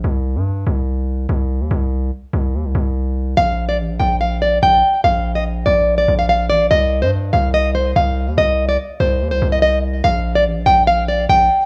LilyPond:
<<
  \new Staff \with { instrumentName = "Nylon-string guitar" } { \time 4/4 \key ees \lydian \tempo 4 = 144 r1 | r1 | f''8. d''16 r8 g''8 f''8 d''8 g''4 | f''8. ees''16 r8 d''8. d''8 f''16 f''8 d''8 |
ees''8. c''16 r8 f''8 ees''8 c''8 f''4 | ees''8. d''16 r8 c''8. c''8 ees''16 ees''8 r8 | f''8. d''16 r8 g''8 f''8 d''8 g''4 | }
  \new Staff \with { instrumentName = "808-style bass" } { \clef bass \time 4/4 \key ees \lydian c,8. g,8. c,4. c,8. ees,16 | c,4 r8 c,8 ees,16 c,16 c,4. | bes,,4 a,,16 bes,,16 bes,,4. bes,,8 r8 | bes,,4. bes,,4 bes,,4 a,,16 bes,,16 |
c,8. g,8. c,4. c,8. ees,16 | c,4 r8 c,8 ees,16 c,16 c,4. | bes,,4 a,,16 bes,,16 bes,,4. bes,,8 r8 | }
>>